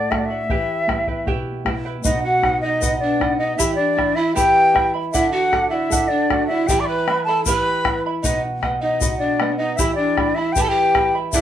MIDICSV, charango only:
0, 0, Header, 1, 2, 480
1, 0, Start_track
1, 0, Key_signature, 1, "minor"
1, 0, Tempo, 774194
1, 308, Time_signature, 2, 2, 24, 8
1, 7074, End_track
2, 0, Start_track
2, 0, Title_t, "Charango"
2, 0, Program_c, 0, 24
2, 0, Note_on_c, 0, 74, 66
2, 0, Note_on_c, 0, 78, 82
2, 65, Note_off_c, 0, 74, 0
2, 66, Note_on_c, 0, 69, 51
2, 68, Note_off_c, 0, 78, 0
2, 72, Note_on_c, 0, 74, 59
2, 76, Note_on_c, 0, 78, 62
2, 180, Note_off_c, 0, 78, 0
2, 187, Note_off_c, 0, 69, 0
2, 187, Note_on_c, 0, 78, 45
2, 190, Note_off_c, 0, 74, 0
2, 198, Note_on_c, 0, 74, 41
2, 308, Note_off_c, 0, 78, 0
2, 310, Note_on_c, 0, 67, 73
2, 310, Note_on_c, 0, 76, 63
2, 311, Note_on_c, 0, 64, 75
2, 312, Note_off_c, 0, 74, 0
2, 315, Note_on_c, 0, 71, 77
2, 316, Note_on_c, 0, 79, 82
2, 540, Note_off_c, 0, 76, 0
2, 544, Note_off_c, 0, 64, 0
2, 546, Note_off_c, 0, 71, 0
2, 546, Note_off_c, 0, 79, 0
2, 548, Note_on_c, 0, 76, 54
2, 549, Note_off_c, 0, 67, 0
2, 551, Note_on_c, 0, 64, 55
2, 553, Note_on_c, 0, 79, 56
2, 554, Note_on_c, 0, 71, 56
2, 659, Note_off_c, 0, 79, 0
2, 662, Note_off_c, 0, 71, 0
2, 666, Note_off_c, 0, 64, 0
2, 667, Note_on_c, 0, 79, 42
2, 668, Note_off_c, 0, 76, 0
2, 669, Note_on_c, 0, 71, 42
2, 673, Note_on_c, 0, 64, 37
2, 784, Note_off_c, 0, 71, 0
2, 784, Note_off_c, 0, 79, 0
2, 786, Note_off_c, 0, 64, 0
2, 788, Note_on_c, 0, 67, 81
2, 791, Note_on_c, 0, 76, 70
2, 792, Note_on_c, 0, 71, 84
2, 792, Note_on_c, 0, 79, 89
2, 793, Note_on_c, 0, 64, 89
2, 1024, Note_off_c, 0, 76, 0
2, 1028, Note_off_c, 0, 64, 0
2, 1028, Note_off_c, 0, 67, 0
2, 1030, Note_off_c, 0, 71, 0
2, 1030, Note_off_c, 0, 79, 0
2, 1031, Note_on_c, 0, 76, 56
2, 1036, Note_on_c, 0, 64, 53
2, 1038, Note_on_c, 0, 71, 64
2, 1039, Note_on_c, 0, 79, 57
2, 1140, Note_off_c, 0, 79, 0
2, 1145, Note_off_c, 0, 71, 0
2, 1147, Note_on_c, 0, 79, 46
2, 1150, Note_off_c, 0, 76, 0
2, 1152, Note_off_c, 0, 64, 0
2, 1152, Note_on_c, 0, 71, 49
2, 1161, Note_on_c, 0, 64, 49
2, 1264, Note_off_c, 0, 71, 0
2, 1268, Note_off_c, 0, 79, 0
2, 1269, Note_off_c, 0, 64, 0
2, 1271, Note_on_c, 0, 71, 77
2, 1274, Note_on_c, 0, 75, 81
2, 1275, Note_on_c, 0, 78, 79
2, 1503, Note_off_c, 0, 71, 0
2, 1510, Note_off_c, 0, 75, 0
2, 1511, Note_on_c, 0, 71, 55
2, 1512, Note_off_c, 0, 78, 0
2, 1517, Note_on_c, 0, 75, 57
2, 1520, Note_on_c, 0, 78, 66
2, 1622, Note_off_c, 0, 78, 0
2, 1630, Note_off_c, 0, 71, 0
2, 1630, Note_off_c, 0, 75, 0
2, 1630, Note_on_c, 0, 78, 48
2, 1637, Note_on_c, 0, 75, 41
2, 1745, Note_off_c, 0, 75, 0
2, 1748, Note_on_c, 0, 71, 68
2, 1749, Note_off_c, 0, 78, 0
2, 1752, Note_on_c, 0, 75, 64
2, 1756, Note_on_c, 0, 78, 83
2, 1981, Note_off_c, 0, 71, 0
2, 1985, Note_off_c, 0, 75, 0
2, 1988, Note_off_c, 0, 78, 0
2, 1989, Note_on_c, 0, 71, 57
2, 1992, Note_on_c, 0, 75, 61
2, 1996, Note_on_c, 0, 78, 68
2, 2101, Note_off_c, 0, 78, 0
2, 2108, Note_on_c, 0, 78, 53
2, 2109, Note_off_c, 0, 71, 0
2, 2111, Note_off_c, 0, 75, 0
2, 2118, Note_on_c, 0, 75, 39
2, 2223, Note_off_c, 0, 75, 0
2, 2223, Note_off_c, 0, 78, 0
2, 2223, Note_on_c, 0, 67, 73
2, 2224, Note_on_c, 0, 64, 79
2, 2225, Note_on_c, 0, 79, 71
2, 2226, Note_on_c, 0, 76, 76
2, 2230, Note_on_c, 0, 83, 76
2, 2451, Note_off_c, 0, 79, 0
2, 2455, Note_off_c, 0, 64, 0
2, 2458, Note_off_c, 0, 76, 0
2, 2458, Note_on_c, 0, 79, 59
2, 2461, Note_off_c, 0, 83, 0
2, 2463, Note_on_c, 0, 64, 62
2, 2466, Note_off_c, 0, 67, 0
2, 2466, Note_on_c, 0, 76, 62
2, 2468, Note_on_c, 0, 83, 66
2, 2576, Note_off_c, 0, 83, 0
2, 2580, Note_off_c, 0, 76, 0
2, 2583, Note_on_c, 0, 83, 49
2, 2584, Note_off_c, 0, 64, 0
2, 2584, Note_off_c, 0, 79, 0
2, 2587, Note_on_c, 0, 76, 45
2, 2592, Note_on_c, 0, 64, 42
2, 2694, Note_off_c, 0, 76, 0
2, 2695, Note_off_c, 0, 64, 0
2, 2696, Note_off_c, 0, 83, 0
2, 2700, Note_on_c, 0, 67, 72
2, 2701, Note_on_c, 0, 79, 77
2, 2702, Note_on_c, 0, 76, 77
2, 2703, Note_on_c, 0, 64, 77
2, 2704, Note_on_c, 0, 83, 74
2, 2931, Note_off_c, 0, 79, 0
2, 2933, Note_off_c, 0, 64, 0
2, 2936, Note_off_c, 0, 76, 0
2, 2938, Note_on_c, 0, 79, 59
2, 2939, Note_off_c, 0, 83, 0
2, 2940, Note_on_c, 0, 64, 63
2, 2944, Note_on_c, 0, 76, 66
2, 2945, Note_off_c, 0, 67, 0
2, 2946, Note_on_c, 0, 83, 58
2, 3055, Note_off_c, 0, 83, 0
2, 3062, Note_off_c, 0, 76, 0
2, 3062, Note_on_c, 0, 83, 51
2, 3064, Note_off_c, 0, 79, 0
2, 3065, Note_off_c, 0, 64, 0
2, 3069, Note_on_c, 0, 76, 45
2, 3073, Note_on_c, 0, 64, 42
2, 3180, Note_off_c, 0, 76, 0
2, 3182, Note_on_c, 0, 69, 66
2, 3185, Note_on_c, 0, 74, 75
2, 3186, Note_off_c, 0, 83, 0
2, 3189, Note_on_c, 0, 78, 89
2, 3192, Note_off_c, 0, 64, 0
2, 3417, Note_off_c, 0, 69, 0
2, 3424, Note_off_c, 0, 74, 0
2, 3424, Note_on_c, 0, 69, 58
2, 3426, Note_off_c, 0, 78, 0
2, 3432, Note_on_c, 0, 74, 63
2, 3433, Note_on_c, 0, 78, 62
2, 3533, Note_off_c, 0, 78, 0
2, 3541, Note_on_c, 0, 78, 48
2, 3545, Note_off_c, 0, 74, 0
2, 3547, Note_off_c, 0, 69, 0
2, 3552, Note_on_c, 0, 74, 43
2, 3664, Note_off_c, 0, 74, 0
2, 3665, Note_off_c, 0, 78, 0
2, 3667, Note_on_c, 0, 69, 85
2, 3671, Note_on_c, 0, 74, 74
2, 3672, Note_on_c, 0, 78, 75
2, 3898, Note_off_c, 0, 69, 0
2, 3904, Note_off_c, 0, 74, 0
2, 3906, Note_on_c, 0, 69, 60
2, 3911, Note_off_c, 0, 78, 0
2, 3912, Note_on_c, 0, 74, 57
2, 3917, Note_on_c, 0, 78, 64
2, 4020, Note_off_c, 0, 78, 0
2, 4027, Note_off_c, 0, 74, 0
2, 4028, Note_off_c, 0, 69, 0
2, 4028, Note_on_c, 0, 78, 44
2, 4034, Note_on_c, 0, 74, 41
2, 4149, Note_off_c, 0, 78, 0
2, 4151, Note_on_c, 0, 67, 77
2, 4152, Note_off_c, 0, 74, 0
2, 4153, Note_on_c, 0, 79, 79
2, 4155, Note_on_c, 0, 76, 87
2, 4156, Note_on_c, 0, 64, 76
2, 4158, Note_on_c, 0, 83, 95
2, 4384, Note_off_c, 0, 79, 0
2, 4389, Note_off_c, 0, 64, 0
2, 4390, Note_off_c, 0, 76, 0
2, 4391, Note_off_c, 0, 67, 0
2, 4391, Note_off_c, 0, 83, 0
2, 4391, Note_on_c, 0, 79, 57
2, 4396, Note_on_c, 0, 64, 60
2, 4398, Note_on_c, 0, 76, 67
2, 4398, Note_on_c, 0, 83, 59
2, 4506, Note_off_c, 0, 83, 0
2, 4511, Note_off_c, 0, 79, 0
2, 4513, Note_off_c, 0, 64, 0
2, 4513, Note_off_c, 0, 76, 0
2, 4513, Note_on_c, 0, 83, 54
2, 4520, Note_on_c, 0, 76, 44
2, 4522, Note_on_c, 0, 64, 40
2, 4632, Note_off_c, 0, 64, 0
2, 4632, Note_off_c, 0, 83, 0
2, 4634, Note_on_c, 0, 67, 75
2, 4635, Note_off_c, 0, 76, 0
2, 4637, Note_on_c, 0, 79, 74
2, 4639, Note_on_c, 0, 64, 79
2, 4642, Note_on_c, 0, 83, 80
2, 4643, Note_on_c, 0, 76, 73
2, 4864, Note_off_c, 0, 79, 0
2, 4867, Note_off_c, 0, 64, 0
2, 4872, Note_off_c, 0, 67, 0
2, 4872, Note_on_c, 0, 79, 52
2, 4873, Note_off_c, 0, 76, 0
2, 4875, Note_on_c, 0, 64, 58
2, 4876, Note_off_c, 0, 83, 0
2, 4880, Note_on_c, 0, 76, 54
2, 4883, Note_on_c, 0, 83, 55
2, 4991, Note_off_c, 0, 79, 0
2, 4991, Note_off_c, 0, 83, 0
2, 4992, Note_off_c, 0, 64, 0
2, 4993, Note_off_c, 0, 76, 0
2, 4998, Note_on_c, 0, 83, 59
2, 5000, Note_on_c, 0, 76, 41
2, 5003, Note_on_c, 0, 64, 45
2, 5112, Note_off_c, 0, 64, 0
2, 5114, Note_off_c, 0, 76, 0
2, 5114, Note_off_c, 0, 83, 0
2, 5115, Note_on_c, 0, 71, 84
2, 5117, Note_on_c, 0, 75, 71
2, 5119, Note_on_c, 0, 78, 78
2, 5339, Note_off_c, 0, 71, 0
2, 5343, Note_off_c, 0, 75, 0
2, 5346, Note_on_c, 0, 71, 60
2, 5348, Note_off_c, 0, 78, 0
2, 5351, Note_on_c, 0, 75, 61
2, 5355, Note_on_c, 0, 78, 66
2, 5459, Note_off_c, 0, 78, 0
2, 5466, Note_on_c, 0, 78, 51
2, 5468, Note_off_c, 0, 71, 0
2, 5470, Note_off_c, 0, 75, 0
2, 5478, Note_on_c, 0, 75, 44
2, 5584, Note_off_c, 0, 75, 0
2, 5588, Note_off_c, 0, 78, 0
2, 5591, Note_on_c, 0, 75, 68
2, 5592, Note_on_c, 0, 71, 75
2, 5596, Note_on_c, 0, 78, 74
2, 5822, Note_off_c, 0, 71, 0
2, 5825, Note_off_c, 0, 75, 0
2, 5830, Note_off_c, 0, 78, 0
2, 5830, Note_on_c, 0, 71, 53
2, 5833, Note_on_c, 0, 75, 58
2, 5837, Note_on_c, 0, 78, 54
2, 5943, Note_off_c, 0, 78, 0
2, 5950, Note_off_c, 0, 71, 0
2, 5951, Note_off_c, 0, 75, 0
2, 5951, Note_on_c, 0, 78, 51
2, 5959, Note_on_c, 0, 75, 40
2, 6066, Note_off_c, 0, 78, 0
2, 6068, Note_on_c, 0, 67, 75
2, 6069, Note_off_c, 0, 75, 0
2, 6069, Note_on_c, 0, 79, 74
2, 6071, Note_on_c, 0, 64, 74
2, 6072, Note_on_c, 0, 76, 77
2, 6075, Note_on_c, 0, 83, 82
2, 6301, Note_off_c, 0, 79, 0
2, 6302, Note_off_c, 0, 64, 0
2, 6304, Note_off_c, 0, 76, 0
2, 6308, Note_off_c, 0, 83, 0
2, 6308, Note_on_c, 0, 79, 58
2, 6309, Note_off_c, 0, 67, 0
2, 6309, Note_on_c, 0, 64, 57
2, 6311, Note_on_c, 0, 76, 57
2, 6315, Note_on_c, 0, 83, 61
2, 6425, Note_off_c, 0, 83, 0
2, 6429, Note_off_c, 0, 64, 0
2, 6429, Note_off_c, 0, 79, 0
2, 6431, Note_off_c, 0, 76, 0
2, 6433, Note_on_c, 0, 83, 54
2, 6437, Note_on_c, 0, 76, 45
2, 6440, Note_on_c, 0, 64, 41
2, 6547, Note_off_c, 0, 64, 0
2, 6549, Note_off_c, 0, 76, 0
2, 6551, Note_off_c, 0, 83, 0
2, 6554, Note_on_c, 0, 67, 67
2, 6555, Note_on_c, 0, 64, 79
2, 6555, Note_on_c, 0, 79, 69
2, 6557, Note_on_c, 0, 76, 80
2, 6558, Note_on_c, 0, 83, 76
2, 6787, Note_off_c, 0, 79, 0
2, 6790, Note_off_c, 0, 64, 0
2, 6792, Note_off_c, 0, 67, 0
2, 6793, Note_off_c, 0, 76, 0
2, 6794, Note_off_c, 0, 83, 0
2, 6794, Note_on_c, 0, 79, 49
2, 6797, Note_on_c, 0, 64, 62
2, 6801, Note_on_c, 0, 76, 59
2, 6802, Note_on_c, 0, 83, 61
2, 6903, Note_off_c, 0, 83, 0
2, 6908, Note_off_c, 0, 76, 0
2, 6910, Note_on_c, 0, 83, 53
2, 6912, Note_off_c, 0, 79, 0
2, 6913, Note_off_c, 0, 64, 0
2, 6916, Note_on_c, 0, 76, 51
2, 6921, Note_on_c, 0, 64, 38
2, 7028, Note_off_c, 0, 76, 0
2, 7030, Note_off_c, 0, 83, 0
2, 7031, Note_on_c, 0, 69, 75
2, 7032, Note_on_c, 0, 74, 82
2, 7036, Note_off_c, 0, 64, 0
2, 7036, Note_on_c, 0, 78, 88
2, 7074, Note_off_c, 0, 69, 0
2, 7074, Note_off_c, 0, 74, 0
2, 7074, Note_off_c, 0, 78, 0
2, 7074, End_track
0, 0, End_of_file